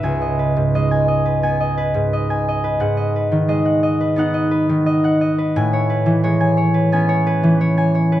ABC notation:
X:1
M:4/4
L:1/16
Q:1/4=88
K:E
V:1 name="Harp"
[Beg] d B G,, d g d B g d B G,, d g d B | f d B D, d f d B f d B D, d f d B | g c B E, c g c B g c B E, c g c B |]
V:2 name="Harp"
[C,,B,]4 G,4 B,8 | G,,4 G,4 [B,D]8 | A,,4 G,4 [B,C]8 |]